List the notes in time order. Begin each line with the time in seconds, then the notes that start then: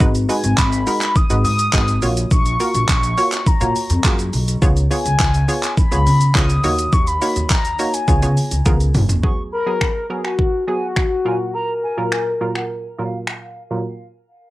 0.00 G#1 G#3 D#4 F#4 B4, kick, shaker
0.15 closed hi-hat, shaker
0.29 G#3 D#4 F#4 B4 G#5, open hi-hat, shaker
0.44 G#1, closed hi-hat, shaker
0.58 B5, kick, clap, shaker
0.72 closed hi-hat, shaker
0.87 G#3 D#4 F#4 A#4, open hi-hat, shaker
1.01 clap, closed hi-hat, shaker
1.16 D#6, kick, shaker
1.30 G#1 G#3 D#4 F#4 B4, closed hi-hat, shaker
1.44 G#2 D#6, open hi-hat, shaker
1.59 closed hi-hat, shaker
1.73 G#1 G#3 D#4 F#4 B4, kick, clap, shaker
1.88 closed hi-hat, shaker
2.02 A#1 A#3 F4 F#4 C#5, open hi-hat, shaker
2.17 closed hi-hat, shaker
2.31 A#1 C#6, kick, shaker
2.46 closed hi-hat, shaker
2.60 A#3 F4 F#4 A#4 C#6, open hi-hat, shaker
2.74 A#1, closed hi-hat, shaker
2.89 A#1, kick, clap, shaker
3.03 closed hi-hat, shaker
3.18 A#3 F4 F#4 C#5, open hi-hat, shaker
3.32 clap, closed hi-hat, shaker
3.46 A#5, muted upright bass stroke, kick, shaker
3.61 A#2 A#3 F4 F#4 C#5, closed hi-hat, shaker
3.76 open hi-hat, shaker
3.90 F2, closed hi-hat, shaker
4.04 F#2 A#3 F4 F#4 G#4, kick, clap, shaker
4.19 closed hi-hat, shaker
4.33 B1, open hi-hat, shaker
4.48 closed hi-hat, shaker
4.62 C#2 B3 F4 G#4 C#5, kick, shaker
4.77 closed hi-hat, shaker
4.91 B3 F4 G#4 C#5 G#5, open hi-hat, shaker
5.05 C#2, closed hi-hat, shaker
5.20 C#2, kick, clap, shaker
5.34 closed hi-hat, shaker
5.48 B3 F4 G#4 C#5, open hi-hat, shaker
5.63 clap, closed hi-hat, shaker
5.77 B5, kick, shaker
5.92 C#2 B3 F4 G#4 C#5, closed hi-hat, shaker
6.06 C#3, open hi-hat, shaker
6.21 closed hi-hat, shaker
6.35 C#2 B3 F4 G#4 C#5 D#6, kick, clap, shaker
6.50 closed hi-hat, shaker
6.64 D#2 A#3 D#4 F#4 C#5, open hi-hat, shaker
6.79 closed hi-hat, shaker
6.93 D#2 C#6, kick, shaker
7.07 B5, closed hi-hat, shaker
7.22 A#3 D#4 F#4 C#5, open hi-hat, shaker
7.36 D#2, closed hi-hat, shaker
7.50 D#2 A#5, kick, clap, shaker
7.65 closed hi-hat, shaker
7.79 A#3 D#4 F#4 C#5, open hi-hat, shaker
7.94 G#5, closed hi-hat, shaker
8.08 C#2 B3 F4 G#4 C#5, kick, shaker
8.22 C#3 B3 F4 G#4 C#5, closed hi-hat, shaker
8.37 open hi-hat, shaker
8.51 C#2, closed hi-hat, shaker
8.65 C#2 B3 F4 G#4 A#4, kick, high tom, shaker
8.80 closed hi-hat, shaker
8.94 F#1, mid tom, open hi-hat, shaker
9.09 closed hi-hat, floor tom, shaker
9.23 F#3 B3 G#4 C#6, kick
9.52 A#4 B5
9.66 F#3 B3 G#4
9.81 B5, finger snap, kick
10.10 F#3 B3 G#4 A#4
10.24 F#4 G#5, finger snap
10.39 kick
10.67 F#3 B3 F#4 G#4 G#5
10.96 F#5, finger snap, kick
11.25 A#2 F#3 F4 A#4 G#5
11.54 A#4 A#5
11.83 G#5
11.97 A#2 F#3 F4 A#4
12.12 G#5, finger snap
12.41 A#2 F#3 F4 A#4
12.55 F#5, finger snap
12.98 A#2 F#3 F4 A#4 F5
13.27 finger snap
13.71 A#2 F#3 F4 A#4